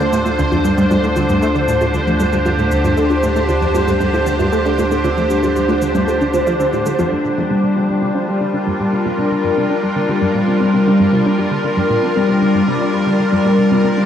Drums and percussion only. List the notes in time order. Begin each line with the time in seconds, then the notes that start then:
0.00 shaker
0.13 shaker
0.26 low bongo, shaker
0.39 shaker
0.52 low bongo, shaker
0.65 shaker
0.78 shaker
0.91 low bongo, shaker
1.04 shaker
1.16 low bongo, shaker
1.29 shaker
1.42 shaker
1.55 low bongo, shaker
1.68 shaker
1.81 low bongo, shaker
1.94 shaker
2.07 shaker
2.20 low bongo, shaker
2.33 shaker
2.46 low bongo, shaker
2.59 shaker
2.71 shaker
2.85 low bongo, shaker
2.97 shaker
3.10 low bongo, shaker
3.23 shaker
3.36 shaker
3.49 low bongo, shaker
3.62 shaker
3.75 low bongo, shaker
3.88 shaker
4.01 shaker
4.14 low bongo, shaker
4.26 shaker
4.40 low bongo, shaker
4.53 shaker
4.65 shaker
4.79 low bongo, shaker
4.91 shaker
5.04 low bongo, shaker
5.17 shaker
5.30 shaker
5.43 low bongo, shaker
5.56 shaker
5.69 low bongo, shaker
5.82 shaker
5.95 shaker
6.08 low bongo, shaker
6.21 shaker
6.34 low bongo, shaker
6.47 shaker
6.60 shaker
6.73 low bongo, shaker
6.86 shaker
6.99 low bongo, shaker